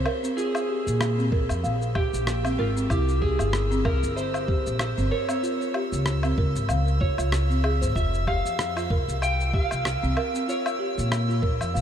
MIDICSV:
0, 0, Header, 1, 6, 480
1, 0, Start_track
1, 0, Key_signature, -4, "minor"
1, 0, Tempo, 631579
1, 288, Time_signature, 4, 2, 24, 8
1, 8977, End_track
2, 0, Start_track
2, 0, Title_t, "Synth texture"
2, 0, Program_c, 0, 99
2, 0, Note_on_c, 0, 88, 81
2, 8977, Note_off_c, 0, 88, 0
2, 8977, End_track
3, 0, Start_track
3, 0, Title_t, "Electric slide guitar"
3, 0, Program_c, 1, 29
3, 0, Note_on_c, 1, 72, 100
3, 279, Note_on_c, 1, 68, 85
3, 303, Note_off_c, 1, 72, 0
3, 973, Note_off_c, 1, 68, 0
3, 1484, Note_on_c, 1, 67, 86
3, 1970, Note_on_c, 1, 65, 82
3, 1980, Note_off_c, 1, 67, 0
3, 2035, Note_off_c, 1, 65, 0
3, 2208, Note_on_c, 1, 67, 90
3, 2442, Note_off_c, 1, 67, 0
3, 2445, Note_on_c, 1, 68, 90
3, 2925, Note_off_c, 1, 68, 0
3, 2928, Note_on_c, 1, 70, 91
3, 3163, Note_off_c, 1, 70, 0
3, 3166, Note_on_c, 1, 72, 97
3, 3616, Note_off_c, 1, 72, 0
3, 3649, Note_on_c, 1, 72, 91
3, 3884, Note_off_c, 1, 72, 0
3, 3887, Note_on_c, 1, 73, 99
3, 4337, Note_off_c, 1, 73, 0
3, 5328, Note_on_c, 1, 73, 79
3, 6048, Note_on_c, 1, 76, 92
3, 6070, Note_off_c, 1, 73, 0
3, 6288, Note_off_c, 1, 76, 0
3, 6291, Note_on_c, 1, 77, 97
3, 7010, Note_off_c, 1, 77, 0
3, 7013, Note_on_c, 1, 79, 102
3, 7248, Note_off_c, 1, 79, 0
3, 7251, Note_on_c, 1, 77, 103
3, 7975, Note_on_c, 1, 73, 88
3, 7991, Note_off_c, 1, 77, 0
3, 8661, Note_off_c, 1, 73, 0
3, 8977, End_track
4, 0, Start_track
4, 0, Title_t, "Marimba"
4, 0, Program_c, 2, 12
4, 44, Note_on_c, 2, 70, 99
4, 166, Note_off_c, 2, 70, 0
4, 176, Note_on_c, 2, 60, 67
4, 280, Note_off_c, 2, 60, 0
4, 282, Note_on_c, 2, 65, 79
4, 412, Note_off_c, 2, 65, 0
4, 525, Note_on_c, 2, 67, 65
4, 602, Note_off_c, 2, 67, 0
4, 899, Note_on_c, 2, 60, 68
4, 961, Note_off_c, 2, 60, 0
4, 1004, Note_on_c, 2, 70, 90
4, 1235, Note_off_c, 2, 70, 0
4, 1243, Note_on_c, 2, 77, 73
4, 1372, Note_off_c, 2, 77, 0
4, 1483, Note_on_c, 2, 67, 71
4, 1562, Note_off_c, 2, 67, 0
4, 1859, Note_on_c, 2, 60, 72
4, 1921, Note_off_c, 2, 60, 0
4, 1966, Note_on_c, 2, 70, 94
4, 2087, Note_off_c, 2, 70, 0
4, 2101, Note_on_c, 2, 60, 71
4, 2202, Note_off_c, 2, 60, 0
4, 2206, Note_on_c, 2, 64, 77
4, 2334, Note_off_c, 2, 64, 0
4, 2446, Note_on_c, 2, 67, 72
4, 2523, Note_off_c, 2, 67, 0
4, 2820, Note_on_c, 2, 60, 72
4, 2881, Note_off_c, 2, 60, 0
4, 2925, Note_on_c, 2, 70, 94
4, 3156, Note_off_c, 2, 70, 0
4, 3165, Note_on_c, 2, 76, 70
4, 3293, Note_off_c, 2, 76, 0
4, 3404, Note_on_c, 2, 67, 70
4, 3482, Note_off_c, 2, 67, 0
4, 3782, Note_on_c, 2, 60, 72
4, 3842, Note_off_c, 2, 60, 0
4, 3887, Note_on_c, 2, 70, 102
4, 4008, Note_off_c, 2, 70, 0
4, 4022, Note_on_c, 2, 60, 68
4, 4123, Note_off_c, 2, 60, 0
4, 4127, Note_on_c, 2, 65, 83
4, 4254, Note_off_c, 2, 65, 0
4, 4370, Note_on_c, 2, 67, 69
4, 4445, Note_off_c, 2, 67, 0
4, 4744, Note_on_c, 2, 60, 72
4, 4803, Note_off_c, 2, 60, 0
4, 4849, Note_on_c, 2, 70, 92
4, 5078, Note_off_c, 2, 70, 0
4, 5087, Note_on_c, 2, 77, 75
4, 5214, Note_off_c, 2, 77, 0
4, 5327, Note_on_c, 2, 65, 66
4, 5449, Note_off_c, 2, 65, 0
4, 5458, Note_on_c, 2, 65, 70
4, 5520, Note_off_c, 2, 65, 0
4, 5700, Note_on_c, 2, 60, 68
4, 5802, Note_off_c, 2, 60, 0
4, 5805, Note_on_c, 2, 68, 74
4, 5927, Note_off_c, 2, 68, 0
4, 5939, Note_on_c, 2, 72, 69
4, 6036, Note_off_c, 2, 72, 0
4, 6049, Note_on_c, 2, 65, 76
4, 6175, Note_off_c, 2, 65, 0
4, 6288, Note_on_c, 2, 67, 70
4, 6364, Note_off_c, 2, 67, 0
4, 6661, Note_on_c, 2, 65, 72
4, 6762, Note_off_c, 2, 65, 0
4, 6770, Note_on_c, 2, 70, 92
4, 6998, Note_off_c, 2, 70, 0
4, 7011, Note_on_c, 2, 77, 76
4, 7136, Note_off_c, 2, 77, 0
4, 7251, Note_on_c, 2, 67, 70
4, 7325, Note_off_c, 2, 67, 0
4, 7622, Note_on_c, 2, 60, 70
4, 7682, Note_off_c, 2, 60, 0
4, 7728, Note_on_c, 2, 70, 102
4, 7848, Note_off_c, 2, 70, 0
4, 7859, Note_on_c, 2, 60, 66
4, 7962, Note_off_c, 2, 60, 0
4, 7966, Note_on_c, 2, 65, 76
4, 8094, Note_off_c, 2, 65, 0
4, 8204, Note_on_c, 2, 67, 69
4, 8282, Note_off_c, 2, 67, 0
4, 8579, Note_on_c, 2, 65, 74
4, 8682, Note_off_c, 2, 65, 0
4, 8682, Note_on_c, 2, 70, 89
4, 8914, Note_off_c, 2, 70, 0
4, 8923, Note_on_c, 2, 77, 73
4, 8977, Note_off_c, 2, 77, 0
4, 8977, End_track
5, 0, Start_track
5, 0, Title_t, "Upright bass"
5, 0, Program_c, 3, 32
5, 659, Note_on_c, 3, 46, 84
5, 976, Note_off_c, 3, 46, 0
5, 1005, Note_on_c, 3, 34, 86
5, 1115, Note_off_c, 3, 34, 0
5, 1143, Note_on_c, 3, 41, 77
5, 1229, Note_off_c, 3, 41, 0
5, 1246, Note_on_c, 3, 34, 85
5, 1581, Note_off_c, 3, 34, 0
5, 1621, Note_on_c, 3, 34, 86
5, 1937, Note_off_c, 3, 34, 0
5, 1966, Note_on_c, 3, 32, 82
5, 2168, Note_off_c, 3, 32, 0
5, 2208, Note_on_c, 3, 36, 103
5, 2543, Note_off_c, 3, 36, 0
5, 2580, Note_on_c, 3, 31, 87
5, 2896, Note_off_c, 3, 31, 0
5, 2928, Note_on_c, 3, 36, 85
5, 3037, Note_off_c, 3, 36, 0
5, 3065, Note_on_c, 3, 31, 81
5, 3504, Note_off_c, 3, 31, 0
5, 3546, Note_on_c, 3, 34, 84
5, 3735, Note_off_c, 3, 34, 0
5, 3784, Note_on_c, 3, 31, 86
5, 3870, Note_off_c, 3, 31, 0
5, 4502, Note_on_c, 3, 37, 84
5, 4817, Note_off_c, 3, 37, 0
5, 4848, Note_on_c, 3, 37, 89
5, 4957, Note_off_c, 3, 37, 0
5, 4982, Note_on_c, 3, 32, 81
5, 5069, Note_off_c, 3, 32, 0
5, 5086, Note_on_c, 3, 37, 90
5, 5421, Note_off_c, 3, 37, 0
5, 5461, Note_on_c, 3, 37, 84
5, 5941, Note_on_c, 3, 32, 84
5, 5953, Note_off_c, 3, 37, 0
5, 6028, Note_off_c, 3, 32, 0
5, 6048, Note_on_c, 3, 29, 94
5, 6382, Note_off_c, 3, 29, 0
5, 6423, Note_on_c, 3, 41, 89
5, 6737, Note_off_c, 3, 41, 0
5, 6766, Note_on_c, 3, 29, 89
5, 6876, Note_off_c, 3, 29, 0
5, 6903, Note_on_c, 3, 36, 74
5, 7343, Note_off_c, 3, 36, 0
5, 7385, Note_on_c, 3, 36, 78
5, 7574, Note_off_c, 3, 36, 0
5, 7626, Note_on_c, 3, 36, 82
5, 7711, Note_off_c, 3, 36, 0
5, 8344, Note_on_c, 3, 46, 87
5, 8658, Note_off_c, 3, 46, 0
5, 8687, Note_on_c, 3, 34, 83
5, 8797, Note_off_c, 3, 34, 0
5, 8823, Note_on_c, 3, 41, 79
5, 8909, Note_off_c, 3, 41, 0
5, 8930, Note_on_c, 3, 34, 93
5, 8977, Note_off_c, 3, 34, 0
5, 8977, End_track
6, 0, Start_track
6, 0, Title_t, "Drums"
6, 42, Note_on_c, 9, 77, 77
6, 118, Note_off_c, 9, 77, 0
6, 183, Note_on_c, 9, 82, 60
6, 259, Note_off_c, 9, 82, 0
6, 289, Note_on_c, 9, 82, 54
6, 365, Note_off_c, 9, 82, 0
6, 416, Note_on_c, 9, 77, 81
6, 423, Note_on_c, 9, 82, 36
6, 492, Note_off_c, 9, 77, 0
6, 499, Note_off_c, 9, 82, 0
6, 664, Note_on_c, 9, 82, 62
6, 740, Note_off_c, 9, 82, 0
6, 765, Note_on_c, 9, 37, 94
6, 765, Note_on_c, 9, 77, 71
6, 771, Note_on_c, 9, 82, 51
6, 841, Note_off_c, 9, 37, 0
6, 841, Note_off_c, 9, 77, 0
6, 847, Note_off_c, 9, 82, 0
6, 904, Note_on_c, 9, 82, 32
6, 980, Note_off_c, 9, 82, 0
6, 1005, Note_on_c, 9, 36, 105
6, 1081, Note_off_c, 9, 36, 0
6, 1135, Note_on_c, 9, 77, 68
6, 1142, Note_on_c, 9, 82, 63
6, 1211, Note_off_c, 9, 77, 0
6, 1218, Note_off_c, 9, 82, 0
6, 1250, Note_on_c, 9, 82, 53
6, 1326, Note_off_c, 9, 82, 0
6, 1382, Note_on_c, 9, 82, 31
6, 1458, Note_off_c, 9, 82, 0
6, 1483, Note_on_c, 9, 77, 77
6, 1485, Note_on_c, 9, 36, 97
6, 1559, Note_off_c, 9, 77, 0
6, 1561, Note_off_c, 9, 36, 0
6, 1624, Note_on_c, 9, 82, 64
6, 1700, Note_off_c, 9, 82, 0
6, 1726, Note_on_c, 9, 37, 91
6, 1732, Note_on_c, 9, 82, 54
6, 1802, Note_off_c, 9, 37, 0
6, 1808, Note_off_c, 9, 82, 0
6, 1859, Note_on_c, 9, 77, 76
6, 1866, Note_on_c, 9, 82, 30
6, 1935, Note_off_c, 9, 77, 0
6, 1942, Note_off_c, 9, 82, 0
6, 2106, Note_on_c, 9, 82, 62
6, 2182, Note_off_c, 9, 82, 0
6, 2204, Note_on_c, 9, 77, 72
6, 2207, Note_on_c, 9, 36, 103
6, 2211, Note_on_c, 9, 82, 54
6, 2280, Note_off_c, 9, 77, 0
6, 2283, Note_off_c, 9, 36, 0
6, 2287, Note_off_c, 9, 82, 0
6, 2345, Note_on_c, 9, 82, 35
6, 2421, Note_off_c, 9, 82, 0
6, 2447, Note_on_c, 9, 36, 57
6, 2523, Note_off_c, 9, 36, 0
6, 2577, Note_on_c, 9, 77, 66
6, 2584, Note_on_c, 9, 82, 58
6, 2653, Note_off_c, 9, 77, 0
6, 2660, Note_off_c, 9, 82, 0
6, 2684, Note_on_c, 9, 37, 94
6, 2691, Note_on_c, 9, 82, 54
6, 2760, Note_off_c, 9, 37, 0
6, 2767, Note_off_c, 9, 82, 0
6, 2825, Note_on_c, 9, 82, 36
6, 2901, Note_off_c, 9, 82, 0
6, 2926, Note_on_c, 9, 77, 72
6, 2928, Note_on_c, 9, 36, 96
6, 3002, Note_off_c, 9, 77, 0
6, 3004, Note_off_c, 9, 36, 0
6, 3066, Note_on_c, 9, 82, 66
6, 3142, Note_off_c, 9, 82, 0
6, 3173, Note_on_c, 9, 82, 54
6, 3249, Note_off_c, 9, 82, 0
6, 3300, Note_on_c, 9, 77, 68
6, 3306, Note_on_c, 9, 82, 31
6, 3376, Note_off_c, 9, 77, 0
6, 3382, Note_off_c, 9, 82, 0
6, 3408, Note_on_c, 9, 36, 103
6, 3484, Note_off_c, 9, 36, 0
6, 3545, Note_on_c, 9, 82, 68
6, 3621, Note_off_c, 9, 82, 0
6, 3643, Note_on_c, 9, 37, 93
6, 3643, Note_on_c, 9, 77, 65
6, 3650, Note_on_c, 9, 82, 55
6, 3719, Note_off_c, 9, 37, 0
6, 3719, Note_off_c, 9, 77, 0
6, 3726, Note_off_c, 9, 82, 0
6, 3784, Note_on_c, 9, 82, 31
6, 3860, Note_off_c, 9, 82, 0
6, 4017, Note_on_c, 9, 77, 70
6, 4024, Note_on_c, 9, 82, 64
6, 4093, Note_off_c, 9, 77, 0
6, 4100, Note_off_c, 9, 82, 0
6, 4132, Note_on_c, 9, 82, 53
6, 4208, Note_off_c, 9, 82, 0
6, 4267, Note_on_c, 9, 82, 32
6, 4343, Note_off_c, 9, 82, 0
6, 4365, Note_on_c, 9, 77, 66
6, 4441, Note_off_c, 9, 77, 0
6, 4505, Note_on_c, 9, 82, 62
6, 4581, Note_off_c, 9, 82, 0
6, 4603, Note_on_c, 9, 37, 90
6, 4610, Note_on_c, 9, 82, 51
6, 4679, Note_off_c, 9, 37, 0
6, 4686, Note_off_c, 9, 82, 0
6, 4735, Note_on_c, 9, 77, 76
6, 4742, Note_on_c, 9, 82, 35
6, 4811, Note_off_c, 9, 77, 0
6, 4818, Note_off_c, 9, 82, 0
6, 4847, Note_on_c, 9, 36, 101
6, 4923, Note_off_c, 9, 36, 0
6, 4983, Note_on_c, 9, 82, 64
6, 5059, Note_off_c, 9, 82, 0
6, 5082, Note_on_c, 9, 77, 70
6, 5089, Note_on_c, 9, 82, 52
6, 5158, Note_off_c, 9, 77, 0
6, 5165, Note_off_c, 9, 82, 0
6, 5223, Note_on_c, 9, 82, 33
6, 5299, Note_off_c, 9, 82, 0
6, 5327, Note_on_c, 9, 36, 100
6, 5403, Note_off_c, 9, 36, 0
6, 5458, Note_on_c, 9, 77, 72
6, 5465, Note_on_c, 9, 82, 64
6, 5534, Note_off_c, 9, 77, 0
6, 5541, Note_off_c, 9, 82, 0
6, 5566, Note_on_c, 9, 37, 90
6, 5572, Note_on_c, 9, 82, 54
6, 5642, Note_off_c, 9, 37, 0
6, 5648, Note_off_c, 9, 82, 0
6, 5706, Note_on_c, 9, 82, 31
6, 5782, Note_off_c, 9, 82, 0
6, 5806, Note_on_c, 9, 77, 73
6, 5882, Note_off_c, 9, 77, 0
6, 5946, Note_on_c, 9, 82, 65
6, 6022, Note_off_c, 9, 82, 0
6, 6046, Note_on_c, 9, 36, 100
6, 6055, Note_on_c, 9, 82, 54
6, 6122, Note_off_c, 9, 36, 0
6, 6131, Note_off_c, 9, 82, 0
6, 6187, Note_on_c, 9, 82, 33
6, 6263, Note_off_c, 9, 82, 0
6, 6287, Note_on_c, 9, 36, 53
6, 6289, Note_on_c, 9, 77, 67
6, 6363, Note_off_c, 9, 36, 0
6, 6365, Note_off_c, 9, 77, 0
6, 6429, Note_on_c, 9, 82, 63
6, 6505, Note_off_c, 9, 82, 0
6, 6528, Note_on_c, 9, 37, 87
6, 6535, Note_on_c, 9, 82, 53
6, 6604, Note_off_c, 9, 37, 0
6, 6611, Note_off_c, 9, 82, 0
6, 6663, Note_on_c, 9, 77, 73
6, 6670, Note_on_c, 9, 82, 34
6, 6739, Note_off_c, 9, 77, 0
6, 6746, Note_off_c, 9, 82, 0
6, 6767, Note_on_c, 9, 36, 94
6, 6843, Note_off_c, 9, 36, 0
6, 6907, Note_on_c, 9, 82, 62
6, 6983, Note_off_c, 9, 82, 0
6, 7008, Note_on_c, 9, 77, 69
6, 7014, Note_on_c, 9, 82, 52
6, 7084, Note_off_c, 9, 77, 0
6, 7090, Note_off_c, 9, 82, 0
6, 7147, Note_on_c, 9, 82, 31
6, 7223, Note_off_c, 9, 82, 0
6, 7247, Note_on_c, 9, 36, 99
6, 7323, Note_off_c, 9, 36, 0
6, 7379, Note_on_c, 9, 77, 72
6, 7386, Note_on_c, 9, 82, 66
6, 7455, Note_off_c, 9, 77, 0
6, 7462, Note_off_c, 9, 82, 0
6, 7488, Note_on_c, 9, 37, 86
6, 7494, Note_on_c, 9, 82, 50
6, 7564, Note_off_c, 9, 37, 0
6, 7570, Note_off_c, 9, 82, 0
6, 7627, Note_on_c, 9, 82, 31
6, 7703, Note_off_c, 9, 82, 0
6, 7727, Note_on_c, 9, 77, 72
6, 7803, Note_off_c, 9, 77, 0
6, 7866, Note_on_c, 9, 82, 57
6, 7942, Note_off_c, 9, 82, 0
6, 7973, Note_on_c, 9, 82, 53
6, 8049, Note_off_c, 9, 82, 0
6, 8101, Note_on_c, 9, 77, 79
6, 8107, Note_on_c, 9, 82, 32
6, 8177, Note_off_c, 9, 77, 0
6, 8183, Note_off_c, 9, 82, 0
6, 8348, Note_on_c, 9, 82, 58
6, 8424, Note_off_c, 9, 82, 0
6, 8449, Note_on_c, 9, 37, 93
6, 8449, Note_on_c, 9, 77, 72
6, 8456, Note_on_c, 9, 82, 52
6, 8525, Note_off_c, 9, 37, 0
6, 8525, Note_off_c, 9, 77, 0
6, 8532, Note_off_c, 9, 82, 0
6, 8588, Note_on_c, 9, 82, 31
6, 8664, Note_off_c, 9, 82, 0
6, 8686, Note_on_c, 9, 36, 97
6, 8762, Note_off_c, 9, 36, 0
6, 8822, Note_on_c, 9, 77, 74
6, 8828, Note_on_c, 9, 82, 58
6, 8898, Note_off_c, 9, 77, 0
6, 8904, Note_off_c, 9, 82, 0
6, 8937, Note_on_c, 9, 82, 47
6, 8977, Note_off_c, 9, 82, 0
6, 8977, End_track
0, 0, End_of_file